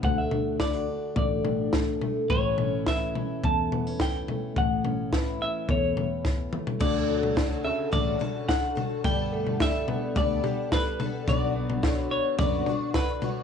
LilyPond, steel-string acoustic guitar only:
\new Staff \with { instrumentName = "Steel-string acoustic guitar" } { \time 4/4 \key d \major \tempo 4 = 107 << { <d a d' fis'>8 d'8 e'16 fis'16 d'8 a8 d'4 a8 | <e a cis' e'>8 cis'8 e'8 cis'8 a8 b16 cis'8. a8 | r8 cis'8 e'8 cis'8 a8 cis'4 a8 | r1 |
r1 | r1 | } \\ { d,4 d4. a,4. | a,4 e4. e,4. | a,4 e4. e,4. | r1 |
r1 | r1 | } >> }